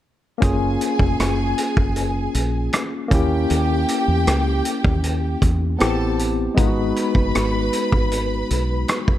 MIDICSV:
0, 0, Header, 1, 5, 480
1, 0, Start_track
1, 0, Key_signature, 6, "major"
1, 0, Tempo, 769428
1, 262, Time_signature, 4, 2, 24, 8
1, 5730, End_track
2, 0, Start_track
2, 0, Title_t, "String section"
2, 0, Program_c, 0, 48
2, 263, Note_on_c, 0, 68, 84
2, 264, Note_on_c, 0, 80, 86
2, 1678, Note_off_c, 0, 68, 0
2, 1678, Note_off_c, 0, 80, 0
2, 1944, Note_on_c, 0, 79, 93
2, 1945, Note_on_c, 0, 67, 83
2, 3358, Note_off_c, 0, 79, 0
2, 3359, Note_off_c, 0, 67, 0
2, 3621, Note_on_c, 0, 69, 78
2, 3621, Note_on_c, 0, 81, 88
2, 3857, Note_off_c, 0, 69, 0
2, 3857, Note_off_c, 0, 81, 0
2, 4103, Note_on_c, 0, 71, 83
2, 4105, Note_on_c, 0, 83, 90
2, 5730, Note_off_c, 0, 71, 0
2, 5730, Note_off_c, 0, 83, 0
2, 5730, End_track
3, 0, Start_track
3, 0, Title_t, "Tine electric piano"
3, 0, Program_c, 1, 4
3, 238, Note_on_c, 1, 58, 63
3, 251, Note_on_c, 1, 61, 61
3, 265, Note_on_c, 1, 65, 61
3, 277, Note_on_c, 1, 68, 72
3, 383, Control_c, 1, 64, 127
3, 1905, Note_off_c, 1, 58, 0
3, 1912, Note_off_c, 1, 61, 0
3, 1919, Note_off_c, 1, 65, 0
3, 1923, Note_on_c, 1, 58, 68
3, 1925, Note_off_c, 1, 68, 0
3, 1936, Note_on_c, 1, 61, 61
3, 1950, Note_on_c, 1, 64, 62
3, 1951, Control_c, 1, 64, 0
3, 1962, Note_on_c, 1, 67, 73
3, 2058, Control_c, 1, 64, 127
3, 3588, Note_off_c, 1, 58, 0
3, 3594, Note_off_c, 1, 61, 0
3, 3601, Note_off_c, 1, 64, 0
3, 3607, Note_off_c, 1, 67, 0
3, 3609, Note_on_c, 1, 59, 68
3, 3615, Note_on_c, 1, 60, 60
3, 3620, Note_on_c, 1, 64, 62
3, 3628, Note_on_c, 1, 67, 74
3, 3631, Control_c, 1, 64, 0
3, 3754, Control_c, 1, 64, 127
3, 4083, Note_on_c, 1, 56, 67
3, 4088, Note_off_c, 1, 59, 0
3, 4095, Note_on_c, 1, 59, 64
3, 4099, Note_off_c, 1, 60, 0
3, 4101, Note_off_c, 1, 64, 0
3, 4105, Note_off_c, 1, 67, 0
3, 4109, Note_on_c, 1, 63, 65
3, 4110, Control_c, 1, 64, 0
3, 4120, Note_on_c, 1, 65, 60
3, 4152, Note_off_c, 1, 65, 0
3, 4162, Note_on_c, 1, 66, 73
3, 4208, Control_c, 1, 64, 127
3, 5730, Note_off_c, 1, 56, 0
3, 5730, Note_off_c, 1, 59, 0
3, 5730, Note_off_c, 1, 63, 0
3, 5730, Note_off_c, 1, 66, 0
3, 5730, End_track
4, 0, Start_track
4, 0, Title_t, "Fingered electric bass"
4, 0, Program_c, 2, 33
4, 266, Note_on_c, 2, 30, 92
4, 471, Note_off_c, 2, 30, 0
4, 623, Note_on_c, 2, 29, 74
4, 726, Note_off_c, 2, 29, 0
4, 745, Note_on_c, 2, 30, 78
4, 951, Note_off_c, 2, 30, 0
4, 1105, Note_on_c, 2, 30, 71
4, 1415, Note_off_c, 2, 30, 0
4, 1465, Note_on_c, 2, 34, 79
4, 1671, Note_off_c, 2, 34, 0
4, 1945, Note_on_c, 2, 39, 82
4, 2151, Note_off_c, 2, 39, 0
4, 2188, Note_on_c, 2, 39, 92
4, 2393, Note_off_c, 2, 39, 0
4, 2545, Note_on_c, 2, 40, 79
4, 2648, Note_off_c, 2, 40, 0
4, 2665, Note_on_c, 2, 37, 75
4, 2871, Note_off_c, 2, 37, 0
4, 3024, Note_on_c, 2, 39, 72
4, 3334, Note_off_c, 2, 39, 0
4, 3384, Note_on_c, 2, 40, 79
4, 3590, Note_off_c, 2, 40, 0
4, 3627, Note_on_c, 2, 33, 84
4, 4039, Note_off_c, 2, 33, 0
4, 4104, Note_on_c, 2, 32, 97
4, 4310, Note_off_c, 2, 32, 0
4, 4461, Note_on_c, 2, 30, 82
4, 4565, Note_off_c, 2, 30, 0
4, 4590, Note_on_c, 2, 32, 80
4, 4794, Note_off_c, 2, 32, 0
4, 4946, Note_on_c, 2, 32, 75
4, 5255, Note_off_c, 2, 32, 0
4, 5309, Note_on_c, 2, 35, 85
4, 5513, Note_off_c, 2, 35, 0
4, 5730, End_track
5, 0, Start_track
5, 0, Title_t, "Drums"
5, 261, Note_on_c, 9, 42, 71
5, 263, Note_on_c, 9, 36, 90
5, 324, Note_off_c, 9, 42, 0
5, 325, Note_off_c, 9, 36, 0
5, 505, Note_on_c, 9, 42, 67
5, 567, Note_off_c, 9, 42, 0
5, 620, Note_on_c, 9, 36, 78
5, 683, Note_off_c, 9, 36, 0
5, 746, Note_on_c, 9, 42, 87
5, 749, Note_on_c, 9, 37, 92
5, 809, Note_off_c, 9, 42, 0
5, 811, Note_off_c, 9, 37, 0
5, 984, Note_on_c, 9, 42, 70
5, 1046, Note_off_c, 9, 42, 0
5, 1104, Note_on_c, 9, 36, 83
5, 1166, Note_off_c, 9, 36, 0
5, 1222, Note_on_c, 9, 42, 81
5, 1284, Note_off_c, 9, 42, 0
5, 1462, Note_on_c, 9, 42, 69
5, 1525, Note_off_c, 9, 42, 0
5, 1700, Note_on_c, 9, 42, 76
5, 1707, Note_on_c, 9, 37, 96
5, 1763, Note_off_c, 9, 42, 0
5, 1769, Note_off_c, 9, 37, 0
5, 1942, Note_on_c, 9, 36, 95
5, 1942, Note_on_c, 9, 42, 63
5, 2004, Note_off_c, 9, 36, 0
5, 2004, Note_off_c, 9, 42, 0
5, 2182, Note_on_c, 9, 42, 72
5, 2244, Note_off_c, 9, 42, 0
5, 2423, Note_on_c, 9, 42, 64
5, 2486, Note_off_c, 9, 42, 0
5, 2664, Note_on_c, 9, 42, 83
5, 2667, Note_on_c, 9, 37, 93
5, 2727, Note_off_c, 9, 42, 0
5, 2729, Note_off_c, 9, 37, 0
5, 2901, Note_on_c, 9, 42, 70
5, 2963, Note_off_c, 9, 42, 0
5, 3022, Note_on_c, 9, 36, 81
5, 3085, Note_off_c, 9, 36, 0
5, 3141, Note_on_c, 9, 42, 85
5, 3203, Note_off_c, 9, 42, 0
5, 3381, Note_on_c, 9, 36, 75
5, 3381, Note_on_c, 9, 42, 67
5, 3443, Note_off_c, 9, 36, 0
5, 3444, Note_off_c, 9, 42, 0
5, 3619, Note_on_c, 9, 42, 77
5, 3625, Note_on_c, 9, 37, 100
5, 3682, Note_off_c, 9, 42, 0
5, 3688, Note_off_c, 9, 37, 0
5, 3863, Note_on_c, 9, 42, 63
5, 3926, Note_off_c, 9, 42, 0
5, 4101, Note_on_c, 9, 42, 70
5, 4102, Note_on_c, 9, 36, 94
5, 4163, Note_off_c, 9, 42, 0
5, 4165, Note_off_c, 9, 36, 0
5, 4344, Note_on_c, 9, 42, 65
5, 4406, Note_off_c, 9, 42, 0
5, 4460, Note_on_c, 9, 36, 78
5, 4522, Note_off_c, 9, 36, 0
5, 4585, Note_on_c, 9, 42, 85
5, 4587, Note_on_c, 9, 37, 99
5, 4647, Note_off_c, 9, 42, 0
5, 4650, Note_off_c, 9, 37, 0
5, 4821, Note_on_c, 9, 42, 67
5, 4883, Note_off_c, 9, 42, 0
5, 4944, Note_on_c, 9, 36, 81
5, 5006, Note_off_c, 9, 36, 0
5, 5063, Note_on_c, 9, 42, 87
5, 5125, Note_off_c, 9, 42, 0
5, 5305, Note_on_c, 9, 42, 68
5, 5368, Note_off_c, 9, 42, 0
5, 5540, Note_on_c, 9, 42, 78
5, 5547, Note_on_c, 9, 37, 103
5, 5603, Note_off_c, 9, 42, 0
5, 5609, Note_off_c, 9, 37, 0
5, 5664, Note_on_c, 9, 36, 79
5, 5726, Note_off_c, 9, 36, 0
5, 5730, End_track
0, 0, End_of_file